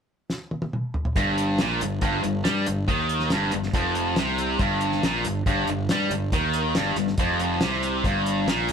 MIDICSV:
0, 0, Header, 1, 4, 480
1, 0, Start_track
1, 0, Key_signature, -2, "minor"
1, 0, Tempo, 430416
1, 1298, Time_signature, 4, 2, 24, 8
1, 9730, End_track
2, 0, Start_track
2, 0, Title_t, "Distorted electric guitar"
2, 0, Program_c, 0, 30
2, 1301, Note_on_c, 0, 43, 99
2, 1773, Note_off_c, 0, 43, 0
2, 1787, Note_on_c, 0, 46, 101
2, 2016, Note_off_c, 0, 46, 0
2, 2034, Note_on_c, 0, 43, 66
2, 2219, Note_off_c, 0, 43, 0
2, 2252, Note_on_c, 0, 43, 99
2, 2482, Note_off_c, 0, 43, 0
2, 2495, Note_on_c, 0, 43, 66
2, 2690, Note_off_c, 0, 43, 0
2, 2726, Note_on_c, 0, 55, 90
2, 2967, Note_off_c, 0, 55, 0
2, 2967, Note_on_c, 0, 43, 68
2, 3166, Note_off_c, 0, 43, 0
2, 3214, Note_on_c, 0, 51, 101
2, 3691, Note_off_c, 0, 51, 0
2, 3696, Note_on_c, 0, 43, 91
2, 3932, Note_off_c, 0, 43, 0
2, 3947, Note_on_c, 0, 43, 64
2, 4137, Note_off_c, 0, 43, 0
2, 4178, Note_on_c, 0, 41, 95
2, 4653, Note_off_c, 0, 41, 0
2, 4666, Note_on_c, 0, 48, 91
2, 5132, Note_on_c, 0, 43, 98
2, 5137, Note_off_c, 0, 48, 0
2, 5610, Note_off_c, 0, 43, 0
2, 5627, Note_on_c, 0, 46, 98
2, 5852, Note_on_c, 0, 43, 63
2, 5858, Note_off_c, 0, 46, 0
2, 6049, Note_off_c, 0, 43, 0
2, 6099, Note_on_c, 0, 43, 95
2, 6333, Note_off_c, 0, 43, 0
2, 6352, Note_on_c, 0, 43, 73
2, 6539, Note_off_c, 0, 43, 0
2, 6594, Note_on_c, 0, 55, 92
2, 6820, Note_off_c, 0, 55, 0
2, 6822, Note_on_c, 0, 43, 73
2, 7014, Note_off_c, 0, 43, 0
2, 7064, Note_on_c, 0, 51, 102
2, 7535, Note_off_c, 0, 51, 0
2, 7539, Note_on_c, 0, 43, 95
2, 7770, Note_off_c, 0, 43, 0
2, 7783, Note_on_c, 0, 43, 64
2, 7973, Note_off_c, 0, 43, 0
2, 8023, Note_on_c, 0, 41, 94
2, 8493, Note_off_c, 0, 41, 0
2, 8506, Note_on_c, 0, 48, 90
2, 8974, Note_off_c, 0, 48, 0
2, 8978, Note_on_c, 0, 43, 103
2, 9449, Note_off_c, 0, 43, 0
2, 9455, Note_on_c, 0, 46, 91
2, 9688, Note_off_c, 0, 46, 0
2, 9730, End_track
3, 0, Start_track
3, 0, Title_t, "Fingered electric bass"
3, 0, Program_c, 1, 33
3, 1286, Note_on_c, 1, 31, 88
3, 1739, Note_off_c, 1, 31, 0
3, 1784, Note_on_c, 1, 34, 81
3, 2005, Note_off_c, 1, 34, 0
3, 2034, Note_on_c, 1, 31, 69
3, 2246, Note_off_c, 1, 31, 0
3, 2253, Note_on_c, 1, 31, 89
3, 2480, Note_off_c, 1, 31, 0
3, 2507, Note_on_c, 1, 31, 73
3, 2728, Note_off_c, 1, 31, 0
3, 2745, Note_on_c, 1, 43, 89
3, 2966, Note_off_c, 1, 43, 0
3, 2993, Note_on_c, 1, 31, 69
3, 3198, Note_off_c, 1, 31, 0
3, 3204, Note_on_c, 1, 39, 87
3, 3659, Note_off_c, 1, 39, 0
3, 3704, Note_on_c, 1, 31, 85
3, 3926, Note_off_c, 1, 31, 0
3, 3950, Note_on_c, 1, 31, 73
3, 4157, Note_off_c, 1, 31, 0
3, 4164, Note_on_c, 1, 29, 89
3, 4619, Note_off_c, 1, 29, 0
3, 4657, Note_on_c, 1, 36, 88
3, 5106, Note_off_c, 1, 36, 0
3, 5122, Note_on_c, 1, 31, 89
3, 5578, Note_off_c, 1, 31, 0
3, 5620, Note_on_c, 1, 34, 89
3, 5844, Note_off_c, 1, 34, 0
3, 5855, Note_on_c, 1, 31, 68
3, 6078, Note_off_c, 1, 31, 0
3, 6085, Note_on_c, 1, 31, 88
3, 6316, Note_off_c, 1, 31, 0
3, 6342, Note_on_c, 1, 31, 75
3, 6561, Note_off_c, 1, 31, 0
3, 6568, Note_on_c, 1, 43, 80
3, 6797, Note_off_c, 1, 43, 0
3, 6804, Note_on_c, 1, 31, 76
3, 7035, Note_off_c, 1, 31, 0
3, 7051, Note_on_c, 1, 39, 90
3, 7501, Note_off_c, 1, 39, 0
3, 7530, Note_on_c, 1, 31, 81
3, 7758, Note_off_c, 1, 31, 0
3, 7762, Note_on_c, 1, 31, 68
3, 7994, Note_off_c, 1, 31, 0
3, 8006, Note_on_c, 1, 29, 88
3, 8458, Note_off_c, 1, 29, 0
3, 8498, Note_on_c, 1, 36, 88
3, 8944, Note_off_c, 1, 36, 0
3, 8964, Note_on_c, 1, 31, 93
3, 9416, Note_off_c, 1, 31, 0
3, 9445, Note_on_c, 1, 34, 82
3, 9673, Note_off_c, 1, 34, 0
3, 9695, Note_on_c, 1, 31, 72
3, 9730, Note_off_c, 1, 31, 0
3, 9730, End_track
4, 0, Start_track
4, 0, Title_t, "Drums"
4, 331, Note_on_c, 9, 38, 67
4, 442, Note_off_c, 9, 38, 0
4, 572, Note_on_c, 9, 48, 68
4, 683, Note_off_c, 9, 48, 0
4, 690, Note_on_c, 9, 48, 83
4, 801, Note_off_c, 9, 48, 0
4, 818, Note_on_c, 9, 47, 83
4, 929, Note_off_c, 9, 47, 0
4, 1050, Note_on_c, 9, 43, 85
4, 1161, Note_off_c, 9, 43, 0
4, 1172, Note_on_c, 9, 43, 94
4, 1284, Note_off_c, 9, 43, 0
4, 1291, Note_on_c, 9, 36, 96
4, 1291, Note_on_c, 9, 42, 79
4, 1402, Note_off_c, 9, 36, 0
4, 1403, Note_off_c, 9, 42, 0
4, 1537, Note_on_c, 9, 42, 62
4, 1648, Note_off_c, 9, 42, 0
4, 1768, Note_on_c, 9, 42, 77
4, 1769, Note_on_c, 9, 38, 106
4, 1880, Note_off_c, 9, 42, 0
4, 1881, Note_off_c, 9, 38, 0
4, 2020, Note_on_c, 9, 42, 67
4, 2131, Note_off_c, 9, 42, 0
4, 2246, Note_on_c, 9, 42, 82
4, 2250, Note_on_c, 9, 36, 98
4, 2358, Note_off_c, 9, 42, 0
4, 2362, Note_off_c, 9, 36, 0
4, 2494, Note_on_c, 9, 42, 55
4, 2605, Note_off_c, 9, 42, 0
4, 2732, Note_on_c, 9, 42, 80
4, 2733, Note_on_c, 9, 38, 103
4, 2843, Note_off_c, 9, 42, 0
4, 2844, Note_off_c, 9, 38, 0
4, 2971, Note_on_c, 9, 42, 62
4, 3083, Note_off_c, 9, 42, 0
4, 3210, Note_on_c, 9, 36, 98
4, 3212, Note_on_c, 9, 42, 79
4, 3322, Note_off_c, 9, 36, 0
4, 3324, Note_off_c, 9, 42, 0
4, 3449, Note_on_c, 9, 42, 60
4, 3561, Note_off_c, 9, 42, 0
4, 3566, Note_on_c, 9, 38, 31
4, 3677, Note_off_c, 9, 38, 0
4, 3683, Note_on_c, 9, 42, 77
4, 3684, Note_on_c, 9, 38, 103
4, 3795, Note_off_c, 9, 42, 0
4, 3796, Note_off_c, 9, 38, 0
4, 3920, Note_on_c, 9, 42, 59
4, 4031, Note_off_c, 9, 42, 0
4, 4048, Note_on_c, 9, 38, 30
4, 4160, Note_off_c, 9, 38, 0
4, 4166, Note_on_c, 9, 36, 95
4, 4166, Note_on_c, 9, 42, 77
4, 4277, Note_off_c, 9, 36, 0
4, 4277, Note_off_c, 9, 42, 0
4, 4406, Note_on_c, 9, 42, 56
4, 4518, Note_off_c, 9, 42, 0
4, 4643, Note_on_c, 9, 42, 76
4, 4644, Note_on_c, 9, 38, 104
4, 4755, Note_off_c, 9, 42, 0
4, 4756, Note_off_c, 9, 38, 0
4, 4887, Note_on_c, 9, 42, 60
4, 4998, Note_off_c, 9, 42, 0
4, 5123, Note_on_c, 9, 42, 72
4, 5124, Note_on_c, 9, 36, 103
4, 5235, Note_off_c, 9, 42, 0
4, 5236, Note_off_c, 9, 36, 0
4, 5360, Note_on_c, 9, 42, 61
4, 5471, Note_off_c, 9, 42, 0
4, 5488, Note_on_c, 9, 38, 30
4, 5599, Note_off_c, 9, 38, 0
4, 5613, Note_on_c, 9, 42, 76
4, 5614, Note_on_c, 9, 38, 105
4, 5725, Note_off_c, 9, 42, 0
4, 5726, Note_off_c, 9, 38, 0
4, 5849, Note_on_c, 9, 42, 62
4, 5961, Note_off_c, 9, 42, 0
4, 6090, Note_on_c, 9, 36, 103
4, 6092, Note_on_c, 9, 42, 79
4, 6202, Note_off_c, 9, 36, 0
4, 6203, Note_off_c, 9, 42, 0
4, 6328, Note_on_c, 9, 42, 60
4, 6439, Note_off_c, 9, 42, 0
4, 6569, Note_on_c, 9, 42, 84
4, 6571, Note_on_c, 9, 38, 104
4, 6681, Note_off_c, 9, 42, 0
4, 6682, Note_off_c, 9, 38, 0
4, 6812, Note_on_c, 9, 42, 60
4, 6924, Note_off_c, 9, 42, 0
4, 7050, Note_on_c, 9, 36, 97
4, 7051, Note_on_c, 9, 42, 86
4, 7162, Note_off_c, 9, 36, 0
4, 7163, Note_off_c, 9, 42, 0
4, 7286, Note_on_c, 9, 42, 59
4, 7398, Note_off_c, 9, 42, 0
4, 7527, Note_on_c, 9, 42, 78
4, 7528, Note_on_c, 9, 38, 100
4, 7638, Note_off_c, 9, 42, 0
4, 7640, Note_off_c, 9, 38, 0
4, 7764, Note_on_c, 9, 42, 56
4, 7765, Note_on_c, 9, 38, 31
4, 7876, Note_off_c, 9, 42, 0
4, 7877, Note_off_c, 9, 38, 0
4, 7890, Note_on_c, 9, 38, 33
4, 8001, Note_off_c, 9, 38, 0
4, 8003, Note_on_c, 9, 42, 79
4, 8006, Note_on_c, 9, 36, 97
4, 8115, Note_off_c, 9, 42, 0
4, 8118, Note_off_c, 9, 36, 0
4, 8247, Note_on_c, 9, 42, 52
4, 8359, Note_off_c, 9, 42, 0
4, 8482, Note_on_c, 9, 42, 76
4, 8483, Note_on_c, 9, 38, 109
4, 8594, Note_off_c, 9, 42, 0
4, 8595, Note_off_c, 9, 38, 0
4, 8730, Note_on_c, 9, 42, 55
4, 8841, Note_off_c, 9, 42, 0
4, 8969, Note_on_c, 9, 36, 100
4, 8972, Note_on_c, 9, 42, 70
4, 9080, Note_off_c, 9, 36, 0
4, 9083, Note_off_c, 9, 42, 0
4, 9215, Note_on_c, 9, 42, 55
4, 9326, Note_off_c, 9, 42, 0
4, 9455, Note_on_c, 9, 42, 76
4, 9456, Note_on_c, 9, 38, 106
4, 9566, Note_off_c, 9, 42, 0
4, 9567, Note_off_c, 9, 38, 0
4, 9686, Note_on_c, 9, 42, 61
4, 9730, Note_off_c, 9, 42, 0
4, 9730, End_track
0, 0, End_of_file